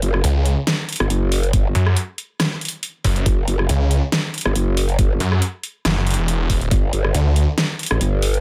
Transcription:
0.02 wobble bass F#1, closed hi-hat
0.14 cross-stick
0.24 detuned saw bass C#2, closed hi-hat
0.46 closed hi-hat
0.67 snare, closed hi-hat
0.89 closed hi-hat
0.93 closed hi-hat
0.96 closed hi-hat
1.00 wobble bass G1, cross-stick
1.10 wobble bass F#1, closed hi-hat
1.32 open hi-hat
1.43 closed hi-hat
1.53 wobble bass G1, kick, closed hi-hat
1.75 detuned saw bass F#2, closed hi-hat
1.87 cross-stick
1.97 closed hi-hat
2.18 closed hi-hat
2.40 cross-stick, snare, closed hi-hat
2.61 closed hi-hat
2.65 closed hi-hat
2.68 closed hi-hat
2.83 closed hi-hat
3.04 detuned saw bass F#1, kick, open hi-hat
3.16 closed hi-hat
3.26 wobble bass F#1, kick, closed hi-hat
3.48 wobble bass F#1, closed hi-hat
3.59 cross-stick
3.69 detuned saw bass C#2, closed hi-hat
3.91 closed hi-hat
4.12 snare, closed hi-hat
4.34 closed hi-hat
4.38 closed hi-hat
4.41 closed hi-hat
4.46 wobble bass G1, cross-stick
4.56 wobble bass F#1, closed hi-hat
4.77 open hi-hat
4.89 closed hi-hat
4.99 wobble bass G1, kick, closed hi-hat
5.20 detuned saw bass F#2, closed hi-hat
5.32 cross-stick
5.42 closed hi-hat
5.63 closed hi-hat
5.85 detuned saw bass F#1, cross-stick, snare, closed hi-hat
6.07 closed hi-hat
6.10 closed hi-hat
6.14 closed hi-hat
6.18 detuned saw bass E1
6.28 closed hi-hat
6.50 kick, open hi-hat
6.61 closed hi-hat
6.71 wobble bass G1, kick, closed hi-hat
6.93 wobble bass G1, closed hi-hat
7.04 cross-stick
7.14 detuned saw bass D2, closed hi-hat
7.36 closed hi-hat
7.58 snare, closed hi-hat
7.79 closed hi-hat
7.83 closed hi-hat
7.86 closed hi-hat
7.91 wobble bass A1, cross-stick
8.01 wobble bass G1, closed hi-hat
8.22 open hi-hat
8.34 closed hi-hat

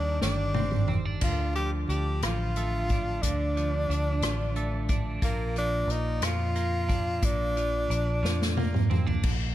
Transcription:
Already playing: fingered electric bass D#2, clean electric guitar D#3 G3 C4 D4, tenor saxophone D4
0.21 fingered electric bass G1, clean electric guitar G3, tenor saxophone D4, snare
0.54 clean electric guitar C4, high tom
0.71 mid tom
0.88 clean electric guitar C4, mid tom
1.05 clean electric guitar D4
1.21 fingered electric bass D2, clean electric guitar D3, tenor saxophone F4, kick, splash
1.55 clean electric guitar F3, tenor saxophone G4, closed hi-hat
1.89 fingered electric bass D2, clean electric guitar D4, tenor saxophone G4, closed hi-hat
2.22 fingered electric bass A1, clean electric guitar F3, tenor saxophone F4, cross-stick, closed hi-hat
2.56 clean electric guitar A3, closed hi-hat
2.89 clean electric guitar D4, kick, closed hi-hat
3.22 fingered electric bass D2, clean electric guitar D3, tenor saxophone D4, kick, closed hi-hat
3.57 clean electric guitar F3, closed hi-hat
3.89 fingered electric bass D2, clean electric guitar D4, closed hi-hat
4.21 fingered electric bass A1, clean electric guitar F3, cross-stick, closed hi-hat
4.56 clean electric guitar A3, closed hi-hat
4.89 clean electric guitar D4, kick, closed hi-hat
5.22 fingered electric bass A#1, clean electric guitar A#2, tenor saxophone A#3, kick, closed hi-hat
5.56 clean electric guitar F3, tenor saxophone D4, closed hi-hat
5.88 fingered electric bass A#1, tenor saxophone D#4, closed hi-hat
6.21 fingered electric bass F2, clean electric guitar F3, tenor saxophone F4, cross-stick, closed hi-hat
6.55 clean electric guitar A#3, closed hi-hat
6.89 clean electric guitar D4, kick, closed hi-hat
7.22 fingered electric bass A#1, clean electric guitar A#2, tenor saxophone D4, kick, closed hi-hat
7.57 clean electric guitar F3, closed hi-hat
7.90 fingered electric bass A#1, clean electric guitar D4, closed hi-hat
8.23 fingered electric bass F2, clean electric guitar F3, snare
8.42 snare
8.57 clean electric guitar A#3, high tom
8.74 mid tom
8.90 clean electric guitar C4, mid tom
9.07 clean electric guitar D4, floor tom
9.23 fingered electric bass A#1, kick, crash

